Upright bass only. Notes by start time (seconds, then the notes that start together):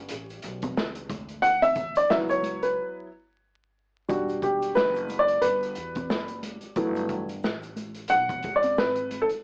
0.10 A1
0.44 B1
0.77 C#2
1.10 D2
2.10 C#2
4.10 E1
4.76 F#1
5.44 G1
5.77 E2
6.10 F#1
6.63 muted upright bass stroke
6.76 G1
7.44 A1
8.11 B1
8.44 C#2
8.78 G#1
9.31 muted upright bass stroke